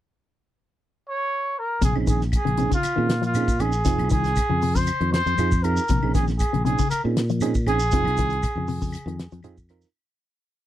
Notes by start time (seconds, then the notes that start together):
1.09 C#5
1.59 A#4
1.81 A#1 C3 G#4, kick, closed hi-hat, shekere
1.95 A#1 C4 C#4 D#4 G#4, claves
2.07 D#3 G#4, kick, closed hi-hat, shekere
2.21 snare, shekere
2.32 kick, closed hi-hat, claves, shekere
2.36 G#4
2.45 A#1 C#3, closed hi-hat
2.57 C3 C4 C#4 D#4 G#4, closed hi-hat, shekere
2.71 C#3 F4, kick, closed hi-hat, shekere
2.83 muted fingered electric bass stroke, closed hi-hat, claves, shekere
2.96 A#2 D#3 C4 C#4 D#4 G#4
3.10 snare, closed hi-hat
3.22 F3 F4, closed hi-hat, shekere
3.34 C4 C#4 D#4 G#4, closed hi-hat, claves, shekere
3.48 kick, shekere
3.60 A#1 C4 C#4 D#4 G#4, closed hi-hat, claves, shekere
3.72 shekere
3.85 F1 C3 C4 D#4 F4 G#4, kick, snare, closed hi-hat, shekere
3.98 C2, closed hi-hat, claves
4.10 D#3 G#4, kick, closed hi-hat, shekere
4.24 snare, closed hi-hat, shekere
4.36 kick, closed hi-hat, claves, shekere
4.49 F2 C#3
4.62 C3, open hi-hat, shekere
4.75 C#3 C5, kick, shekere
4.87 closed hi-hat, claves, shekere
5.01 F2 D#3, closed hi-hat
5.13 C5, snare, closed hi-hat
5.26 F2 F3, closed hi-hat, shekere
5.38 F2 C4 D#4 F4 G#4, closed hi-hat, claves, shekere
5.51 kick, shekere
5.63 C4 D#4 F4 G#4 A#4, closed hi-hat, claves, shekere
5.77 shekere
5.88 A#1 C3, kick, closed hi-hat, shekere
6.03 A#1 C4 C#4 D#4 G#4, claves
6.14 D#3 G#4, kick, snare, closed hi-hat, shekere
6.28 snare, shekere
6.38 G#4, kick, closed hi-hat, claves, shekere
6.53 A#1 C#3, closed hi-hat
6.65 C3 C4 C#4 D#4 G#4, closed hi-hat, shekere
6.79 C#3, kick, closed hi-hat, shekere
6.90 A#4, muted fingered electric bass stroke, closed hi-hat, claves, shekere
7.04 A#2 C4 C#4 D#4 G#4
7.17 snare, closed hi-hat
7.29 F3, closed hi-hat, shekere
7.41 C4 C#4 D#4 G#4, closed hi-hat, claves, shekere
7.55 kick, shekere
7.67 A#1 C4 C#4 D#4 G#4, closed hi-hat, claves, shekere
7.80 shekere
7.91 F1 C3 C4 D#4 F4 G#4, kick, closed hi-hat, shekere
8.04 C2, closed hi-hat, claves
8.17 D#3, kick, closed hi-hat, shekere
8.30 closed hi-hat, shekere
8.43 kick, closed hi-hat, claves, shekere
8.56 F2 C#3
8.67 C3, open hi-hat, shekere
8.82 C#3, kick, shekere
8.92 closed hi-hat, claves, shekere
9.06 F2 D#3, closed hi-hat
9.19 snare, closed hi-hat
9.32 F2 F3, closed hi-hat, shekere
9.43 C4 D#4 F4 G#4, closed hi-hat, claves, shekere
9.57 kick, shekere
9.69 C4 D#4 F4 A#4, snare, closed hi-hat, claves, shekere
9.82 snare, shekere